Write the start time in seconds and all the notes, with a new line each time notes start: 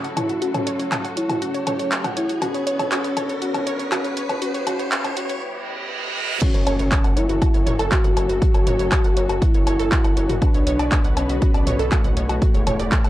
Already playing: C#3 F#3 A3 F#4 A4, riser
0.04 F#5, closed hi-hat
0.17 E4 C#5, closed hi-hat, mid tom, low woodblock
0.29 F#4, closed hi-hat
0.42 C#4 F#4, closed hi-hat
0.54 C#5, closed hi-hat, mid tom, low woodblock
0.67 C#5, closed hi-hat
0.79 C#5, closed hi-hat
0.92 A5, clap, closed hi-hat, mid tom, low woodblock
1.04 F#5, closed hi-hat
1.17 E4 C#5, closed hi-hat
1.29 F#4, closed hi-hat, mid tom, low woodblock
1.42 C#4 F#4, closed hi-hat
1.54 C#5, closed hi-hat
1.67 C#5, closed hi-hat, mid tom, low woodblock
1.79 C#5, closed hi-hat
1.92 A5, clap, closed hi-hat
2.04 F#5, closed hi-hat, mid tom, low woodblock
2.17 E4 C#5, closed hi-hat
2.29 F#4, closed hi-hat
2.42 D3 B3 C#4 F#4 B4, closed hi-hat, mid tom, low woodblock
2.54 C#5, closed hi-hat
2.67 C#5, closed hi-hat
2.79 C#5, closed hi-hat, mid tom, low woodblock
2.92 C#4 F#4, clap, closed hi-hat
3.04 C#5, closed hi-hat
3.17 C#5, closed hi-hat, mid tom, low woodblock
3.29 C#5, closed hi-hat
3.42 C#4 F#4, closed hi-hat
3.54 C#5, closed hi-hat, mid tom, low woodblock
3.67 C#5, closed hi-hat
3.79 C#5, closed hi-hat
3.92 C#4 F#4, clap, closed hi-hat, mid tom, low woodblock
4.04 C#5, closed hi-hat
4.17 C#5, closed hi-hat
4.29 C#5, closed hi-hat, mid tom, low woodblock
4.42 E3 G3 C#4 F#4 G4, closed hi-hat
4.54 C#5, closed hi-hat
4.67 C#4 F#4, closed hi-hat, mid tom, low woodblock
4.79 C#5, closed hi-hat
4.92 C#4 F#4, clap, closed hi-hat
5.04 C#5, closed hi-hat, mid tom, low woodblock
5.17 C#4 F#4, closed hi-hat
5.29 C#5, closed hi-hat
5.42 reverse cymbal
6.42 C#3 F#3 A3 C#4 F#4 A4, kick, closed hi-hat, crash, impact
6.54 F#1 C#5, closed hi-hat
6.67 F#1 C#5, closed hi-hat, low woodblock
6.79 F#1 C#5, closed hi-hat
6.92 A5, kick, clap, closed hi-hat
7.04 F#1 F#5, closed hi-hat, low woodblock
7.17 F#1 E4 C#5, closed hi-hat
7.29 F#1 F#4, closed hi-hat
7.42 F#4, kick, closed hi-hat, low woodblock
7.54 F#1 C#5, closed hi-hat
7.66 F#1 C#5, closed hi-hat, mid tom
7.79 F#1 A4, closed hi-hat, low woodblock
7.92 F#4, kick, clap, closed hi-hat
8.04 F#1 F#5, closed hi-hat, mid tom
8.17 F#1 C#5, closed hi-hat, low woodblock
8.29 F#1 F#4, closed hi-hat
8.42 F#4, kick, closed hi-hat
8.54 F#1 C#5, closed hi-hat, low woodblock
8.67 F#1 C#5, closed hi-hat, mid tom
8.79 F#1 C#5, closed hi-hat
8.92 A5, kick, clap, closed hi-hat, low woodblock
9.04 F#1 F#5, closed hi-hat
9.17 F#1 C#5, closed hi-hat
9.29 F#1 F#4, closed hi-hat, low woodblock
9.42 E4 F#4, kick, closed hi-hat
9.54 F#1 C#5, closed hi-hat
9.67 F#1 C#5, closed hi-hat, low woodblock
9.79 F#1 A4, closed hi-hat
9.92 F#4, kick, clap, closed hi-hat
10.04 F#1 F#5, closed hi-hat, low woodblock
10.17 F#1 C#5, closed hi-hat
10.29 F#1 F#4, closed hi-hat, mid tom
10.42 D3 B3 D4 F#4 B4, kick, closed hi-hat, low woodblock
10.54 B1 C#5, closed hi-hat
10.67 B1 C#5, closed hi-hat
10.79 B1 D5, closed hi-hat, low woodblock
10.92 A5, kick, clap, closed hi-hat
11.04 B1 F#5, closed hi-hat
11.17 B1 C#4 C#5, closed hi-hat, low woodblock
11.29 B1 F#4, closed hi-hat
11.42 F#4, kick, closed hi-hat
11.54 B1 D5, closed hi-hat, low woodblock
11.67 B1 C#5, closed hi-hat, mid tom
11.79 B1 A4, closed hi-hat
11.92 A3 F#4, kick, clap, closed hi-hat, low woodblock
12.04 B1 F#5, closed hi-hat, mid tom
12.17 B1 C#5, closed hi-hat
12.29 B1 F#4, closed hi-hat, low woodblock
12.42 B2 E3 G3 E4 F#4 G4, kick, closed hi-hat
12.54 E1 C#5, closed hi-hat
12.67 E1 C#5, closed hi-hat, mid tom, low woodblock
12.79 E1 D5, closed hi-hat
12.92 A5, kick, clap, closed hi-hat
13.04 E1 F#5, closed hi-hat, low woodblock